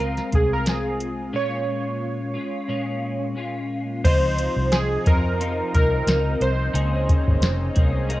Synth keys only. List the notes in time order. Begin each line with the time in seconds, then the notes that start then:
Already playing: A#4
0.35 G#4
0.53 A#4
0.69 G#4
1.36 C#5
4.05 C5
4.72 G#4
5.07 A#4
5.75 A#4
6.42 C5